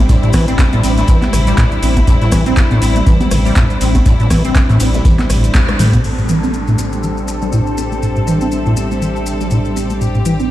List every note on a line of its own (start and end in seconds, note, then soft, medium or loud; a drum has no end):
0.00 6.00 G3 medium
0.00 6.00 C4 medium
0.00 6.03 D4 medium
0.00 6.03 E4 medium
0.00 6.04 G4 medium
0.00 6.04 C5 medium
0.00 6.04 D5 medium
0.09 0.17 A2 medium
0.09 kick loud
0.09 closed hi-hat medium
0.09 maracas medium
0.23 0.32 A2 medium
0.23 closed hi-hat soft
0.23 maracas soft
0.33 0.55 A1 medium
0.33 0.46 E3 loud
0.33 kick medium
0.33 cross-stick medium
0.33 closed hi-hat medium
0.33 open hi-hat loud
0.33 ride medium
0.33 high conga medium
0.33 maracas medium
0.48 0.60 C4 loud
0.48 closed hi-hat medium
0.48 maracas soft
0.58 0.63 A3 loud
0.58 kick loud
0.58 snare loud
0.58 clap loud
0.58 closed hi-hat medium
0.58 maracas medium
0.73 0.81 A1 loud
0.73 0.82 A2 loud
0.73 closed hi-hat soft
0.73 high conga soft
0.73 maracas soft
0.83 1.04 A1 medium
0.83 0.95 C4 medium
0.83 closed hi-hat medium
0.83 open hi-hat loud
0.83 ride medium
0.83 maracas medium
0.97 1.01 A3 medium
0.97 snare medium
0.97 closed hi-hat medium
0.97 maracas soft
1.08 1.24 E3 medium
1.08 kick loud
1.08 closed hi-hat medium
1.08 maracas medium
1.22 1.35 A3 medium
1.22 snare soft
1.22 clap soft
1.22 closed hi-hat soft
1.22 high conga medium
1.22 maracas soft
1.33 1.54 A1 medium
1.33 1.41 C3 loud
1.33 cross-stick medium
1.33 closed hi-hat medium
1.33 open hi-hat loud
1.33 ride medium
1.33 maracas medium
1.47 1.56 G3 loud
1.47 closed hi-hat medium
1.47 maracas soft
1.57 1.66 A2 loud
1.57 kick loud
1.57 snare loud
1.57 clap loud
1.57 closed hi-hat loud
1.57 closed hi-hat medium
1.57 high conga soft
1.57 maracas medium
1.71 closed hi-hat soft
1.71 maracas soft
1.82 2.03 A1 loud
1.82 1.94 C4 medium
1.82 closed hi-hat medium
1.82 open hi-hat loud
1.82 ride medium
1.82 maracas loud
1.97 2.00 A3 medium
1.97 kick medium
1.97 closed hi-hat medium
1.97 high conga medium
1.97 maracas soft
2.07 2.15 A2 medium
2.07 kick loud
2.07 closed hi-hat medium
2.07 maracas soft
2.21 2.30 A2 medium
2.21 snare soft
2.21 closed hi-hat soft
2.21 maracas soft
2.32 2.53 A1 loud
2.32 2.44 E3 loud
2.32 kick medium
2.32 cross-stick medium
2.32 closed hi-hat medium
2.32 open hi-hat loud
2.32 ride medium
2.32 high conga medium
2.32 maracas medium
2.46 2.58 C4 loud
2.46 closed hi-hat medium
2.46 maracas soft
2.57 2.62 A3 loud
2.57 kick loud
2.57 snare loud
2.57 clap loud
2.57 closed hi-hat loud
2.57 closed hi-hat medium
2.57 maracas medium
2.71 2.80 A1 loud
2.71 2.80 A2 loud
2.71 closed hi-hat soft
2.71 high conga soft
2.71 maracas soft
2.81 3.03 A1 medium
2.81 2.93 C4 medium
2.81 closed hi-hat medium
2.81 open hi-hat loud
2.81 ride medium
2.81 maracas medium
2.96 2.99 A3 medium
2.96 closed hi-hat medium
2.96 maracas soft
3.07 3.22 E3 medium
3.07 kick loud
3.07 closed hi-hat medium
3.07 maracas medium
3.21 3.33 A3 medium
3.21 closed hi-hat soft
3.21 high conga medium
3.21 maracas soft
3.31 3.52 A1 medium
3.31 3.39 C3 loud
3.31 cross-stick medium
3.31 closed hi-hat medium
3.31 open hi-hat loud
3.31 ride medium
3.31 maracas medium
3.45 3.54 G3 loud
3.45 open hi-hat medium
3.45 maracas soft
3.56 3.64 A2 loud
3.56 kick loud
3.56 snare loud
3.56 clap loud
3.56 closed hi-hat medium
3.56 high conga soft
3.56 maracas medium
3.70 closed hi-hat soft
3.70 maracas soft
3.81 4.02 A1 loud
3.81 3.93 C4 medium
3.81 snare soft
3.81 closed hi-hat medium
3.81 open hi-hat loud
3.81 ride medium
3.81 maracas medium
3.95 3.99 A3 medium
3.95 kick medium
3.95 closed hi-hat medium
3.95 closed hi-hat soft
3.95 high conga medium
3.95 maracas soft
4.05 4.14 A2 medium
4.05 kick loud
4.05 closed hi-hat medium
4.05 maracas medium
4.20 4.29 A2 medium
4.20 closed hi-hat soft
4.20 maracas soft
4.30 4.51 A1 loud
4.30 4.42 E3 loud
4.30 kick medium
4.30 cross-stick medium
4.30 closed hi-hat medium
4.30 open hi-hat loud
4.30 ride medium
4.30 high conga medium
4.30 maracas medium
4.45 4.57 C4 loud
4.45 closed hi-hat medium
4.45 maracas soft
4.55 4.60 A3 loud
4.55 kick loud
4.55 snare loud
4.55 clap loud
4.55 closed hi-hat medium
4.55 maracas medium
4.69 4.78 A1 loud
4.69 4.78 A2 loud
4.69 closed hi-hat soft
4.69 high conga soft
4.69 maracas soft
4.80 5.01 A1 medium
4.80 4.92 C4 medium
4.80 closed hi-hat medium
4.80 open hi-hat loud
4.80 ride medium
4.80 maracas medium
4.94 4.98 A3 medium
4.94 snare medium
4.94 closed hi-hat medium
4.94 maracas soft
5.05 5.21 E3 medium
5.05 kick loud
5.05 closed hi-hat medium
5.05 maracas soft
5.19 5.31 A3 medium
5.19 snare soft
5.19 clap soft
5.19 closed hi-hat soft
5.19 high conga medium
5.19 maracas soft
5.30 5.51 A1 loud
5.30 5.45 A2 medium
5.30 cross-stick medium
5.30 closed hi-hat medium
5.30 open hi-hat loud
5.30 ride medium
5.30 maracas medium
5.44 5.56 E3 loud
5.44 closed hi-hat medium
5.44 maracas soft
5.55 5.59 C3 loud
5.55 kick loud
5.55 snare loud
5.55 clap loud
5.55 closed hi-hat medium
5.55 high tom medium
5.55 high conga soft
5.55 maracas medium
5.68 cross-stick medium
5.68 closed hi-hat soft
5.68 high tom medium
5.68 maracas soft
5.79 6.00 A2 medium
5.79 5.87 A3 medium
5.79 closed hi-hat medium
5.79 open hi-hat loud
5.79 mid tom medium
5.79 ride medium
5.79 maracas medium
5.93 6.02 A3 medium
5.93 kick medium
5.93 closed hi-hat medium
5.93 mid tom medium
5.93 high conga medium
5.93 maracas soft
6.04 10.51 A1 medium
6.04 6.12 A2 medium
6.04 10.51 G3 medium
6.04 10.51 C4 medium
6.04 10.51 D4 medium
6.04 9.97 A4 medium
6.04 crash medium
6.04 downlifter medium
6.04 maracas soft
6.18 6.27 A2 medium
6.18 maracas soft
6.29 6.41 E3 loud
6.29 10.51 G4 medium
6.29 maracas medium
6.43 6.55 C4 medium
6.43 maracas soft
6.47 10.51 C5 medium
6.54 6.58 A3 loud
6.54 maracas soft
6.67 6.77 A2 loud
6.67 maracas soft
6.78 6.90 C4 medium
6.78 maracas medium
6.93 6.96 A3 medium
6.93 maracas soft
7.03 7.19 E3 medium
7.03 maracas soft
7.17 7.30 A3 medium
7.17 maracas soft
7.28 7.36 C3 medium
7.28 maracas medium
7.42 7.51 G3 medium
7.42 maracas soft
7.52 7.61 A2 medium
7.52 maracas soft
7.67 10.51 E5 medium
7.67 maracas soft
7.78 7.89 C4 medium
7.78 maracas medium
7.92 7.95 A3 medium
7.92 maracas soft
8.03 8.10 A2 medium
8.03 maracas soft
8.16 8.25 A2 medium
8.16 maracas soft
8.27 8.39 E3 loud
8.27 maracas medium
8.41 8.54 C4 medium
8.41 maracas soft
8.52 8.57 A3 loud
8.52 maracas medium
8.66 8.75 A2 loud
8.66 maracas soft
8.77 8.89 C4 medium
8.77 maracas medium
8.91 8.95 A3 medium
8.91 maracas soft
9.02 9.17 E3 medium
9.02 maracas soft
9.16 9.28 A3 medium
9.16 maracas soft
9.26 9.34 C3 loud
9.26 maracas medium
9.41 9.49 G3 loud
9.41 maracas soft
9.50 9.59 A2 medium
9.50 maracas soft
9.65 maracas soft
9.76 9.88 C4 medium
9.76 maracas medium
9.90 9.94 A3 medium
9.90 maracas soft
10.01 10.09 A2 medium
10.01 10.51 G4 medium
10.01 maracas medium
10.15 10.24 A2 medium
10.15 maracas soft
10.25 10.37 E3 loud
10.25 maracas medium
10.40 10.51 C4 medium
10.40 maracas soft
10.44 10.51 D5 medium